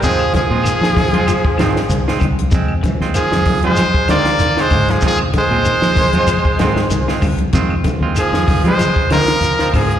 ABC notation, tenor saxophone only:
X:1
M:4/4
L:1/16
Q:"Swing 16ths" 1/4=96
K:Fdor
V:1 name="Tenor saxophone" clef=bass
F,2 F,12 z2 | z4 F,3 A,3 B,3 A,2 F, | F,2 A,12 z2 | z4 F,3 A,3 F,4 F,2 |]